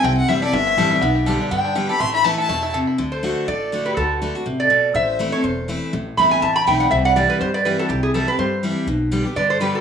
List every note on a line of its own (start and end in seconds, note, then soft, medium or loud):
0.00 0.21 C2 loud
0.00 0.15 E4 medium
0.00 0.27 A4 medium
0.00 0.17 G5 medium
0.04 0.51 C3 medium
0.04 0.40 C4 medium
0.17 0.30 F#5 loud
0.28 0.50 F#1 medium
0.28 0.42 E3 medium
0.28 0.42 G3 medium
0.28 0.42 C4 medium
0.28 0.52 E4 medium
0.28 0.41 E4 medium
0.28 0.42 E5 loud
0.42 0.54 C4 medium
0.42 0.53 E4 medium
0.42 0.76 A4 medium
0.42 0.55 D5 loud
0.53 0.74 G1 medium
0.53 1.00 G2 medium
0.53 0.89 E4 medium
0.53 1.27 E5 loud
0.67 1.00 C4 medium
0.77 0.98 A1 medium
0.77 1.01 E3 medium
0.77 1.01 G3 loud
0.77 1.02 C4 medium
0.77 1.02 E4 medium
0.77 1.02 A4 medium
0.91 1.02 E4 medium
1.02 1.35 B1 loud
1.02 1.49 B2 medium
1.02 1.37 B3 medium
1.15 1.49 G4 medium
1.26 1.50 D3 medium
1.26 1.50 G3 medium
1.26 1.51 B3 loud
1.26 1.51 G4 medium
1.26 1.62 A4 medium
1.40 1.63 D4 medium
1.50 1.84 G2 medium
1.50 1.74 D3 medium
1.50 1.87 B3 medium
1.50 1.86 G5 medium
1.64 1.98 D4 medium
1.75 1.89 D3 medium
1.75 1.89 G3 loud
1.75 1.89 B3 medium
1.75 2.00 G4 medium
1.75 1.88 G4 medium
1.89 2.01 B3 medium
1.89 2.00 G4 medium
1.89 2.00 A4 medium
1.89 2.01 B5 loud
2.00 2.33 A1 loud
2.00 2.47 A2 medium
2.00 2.36 A3 medium
2.00 2.13 C6 loud
2.14 2.23 E4 medium
2.14 2.26 B5 loud
2.24 2.48 E3 medium
2.24 2.48 A3 medium
2.24 2.49 B3 medium
2.24 2.60 E4 medium
2.24 2.49 E4 loud
2.24 2.38 A5 loud
2.38 2.72 A4 medium
2.38 2.72 A5 loud
2.49 2.82 E2 medium
2.49 2.73 B2 medium
2.49 2.85 A3 medium
2.63 2.86 E4 medium
2.74 2.98 C3 loud
2.74 2.98 A4 medium
2.87 2.98 E4 medium
2.98 3.32 D2 loud
2.98 3.22 D3 medium
3.12 3.45 A4 medium
3.12 3.45 C5 medium
3.23 3.46 D3 medium
3.23 3.47 A3 medium
3.23 3.47 D4 loud
3.23 3.47 F#4 medium
3.48 3.81 A1 medium
3.48 3.95 A2 medium
3.48 3.83 A4 medium
3.48 3.83 D5 medium
3.72 3.96 D3 medium
3.72 3.96 A3 medium
3.72 3.96 D4 medium
3.72 3.96 F#4 medium
3.86 3.96 G4 medium
3.86 3.96 B4 medium
3.97 4.30 D2 loud
3.97 4.20 D3 medium
3.97 4.20 F#4 medium
3.97 4.20 A4 medium
4.22 4.35 D3 medium
4.22 4.35 A3 medium
4.22 4.35 D4 medium
4.22 4.34 F#4 medium
4.35 4.46 D4 medium
4.35 4.46 F#4 medium
4.46 4.79 A1 medium
4.46 4.69 C3 medium
4.60 4.93 A4 medium
4.60 4.93 D5 medium
4.70 4.94 B2 medium
4.94 5.28 A1 loud
4.94 5.42 A2 medium
4.94 5.30 C5 medium
4.94 5.31 E5 medium
5.19 5.32 E3 medium
5.19 5.33 A3 medium
5.19 5.33 C4 medium
5.19 5.31 E4 medium
5.32 5.44 C4 medium
5.32 5.43 E4 medium
5.32 5.45 A4 medium
5.32 5.45 C#5 medium
5.44 5.77 E1 medium
5.44 5.91 E2 medium
5.44 5.69 A4 medium
5.44 5.69 C5 medium
5.68 5.92 E3 medium
5.68 5.92 A3 medium
5.68 5.92 C4 medium
5.68 5.93 E4 loud
5.93 6.10 A1 loud
5.93 6.40 A2 medium
6.17 6.39 G1 medium
6.17 6.41 E3 medium
6.17 6.42 A3 medium
6.17 6.42 C4 loud
6.17 6.42 E4 medium
6.17 6.30 E5 medium
6.17 6.31 B5 loud
6.31 6.42 E5 medium
6.31 6.42 G#5 loud
6.42 6.63 A1 medium
6.42 6.89 E2 medium
6.42 6.54 E5 medium
6.42 6.55 A5 medium
6.55 6.66 G5 medium
6.55 6.66 B5 loud
6.67 6.88 B1 medium
6.67 6.90 E3 medium
6.67 6.90 A3 medium
6.67 6.91 C4 medium
6.67 6.91 E4 medium
6.67 6.79 E5 medium
6.67 6.80 G5 medium
6.80 6.90 D5 medium
6.80 6.90 F#5 medium
6.91 7.24 C2 medium
6.91 7.38 C3 medium
6.91 7.04 C5 medium
6.91 7.04 E5 medium
7.04 7.15 D5 medium
7.04 7.16 F#5 loud
7.15 7.39 E3 medium
7.15 7.40 G3 medium
7.15 7.40 C4 medium
7.15 7.40 E4 medium
7.15 7.28 G4 medium
7.15 7.29 D5 medium
7.28 7.39 G4 medium
7.28 7.40 B4 medium
7.40 7.74 G2 medium
7.40 7.88 G2 medium
7.40 7.53 G4 medium
7.40 7.54 C5 medium
7.53 7.64 B4 medium
7.53 7.65 D5 medium
7.64 7.88 E3 medium
7.64 7.89 G3 medium
7.64 7.89 C4 medium
7.64 7.89 E4 medium
7.64 7.80 G4 medium
7.64 7.78 B4 medium
7.79 7.88 F#4 medium
7.79 7.88 A4 medium
7.89 8.23 C2 loud
7.89 8.36 C3 medium
7.89 8.02 E4 medium
7.89 8.02 G4 medium
8.03 8.14 E4 medium
8.03 8.14 G#4 medium
8.14 8.27 E3 medium
8.14 8.27 G3 medium
8.14 8.28 C4 medium
8.14 8.28 E4 medium
8.14 8.26 E4 medium
8.14 8.27 A4 medium
8.28 8.39 C4 medium
8.28 8.38 E4 medium
8.28 8.39 G4 medium
8.28 8.38 B4 medium
8.38 8.71 G2 medium
8.38 8.85 G2 medium
8.38 8.63 G4 medium
8.38 8.63 C5 medium
8.63 8.86 E3 medium
8.63 8.87 G3 medium
8.63 8.87 C4 medium
8.63 8.87 E4 medium
8.87 9.20 B1 medium
8.87 9.34 B2 medium
9.11 9.25 D3 medium
9.11 9.25 G3 loud
9.11 9.25 B3 medium
9.11 9.24 G4 medium
9.25 9.37 B3 medium
9.25 9.36 G4 medium
9.36 9.69 G2 medium
9.36 9.59 D3 medium
9.36 9.49 B4 medium
9.36 9.50 D5 loud
9.50 9.60 A4 medium
9.50 9.60 C5 medium
9.60 9.81 D3 medium
9.60 9.81 G3 medium
9.60 9.81 B3 medium
9.60 9.74 G4 medium
9.60 9.81 G4 medium
9.60 9.74 B4 medium
9.74 9.81 F#4 medium
9.74 9.81 A4 medium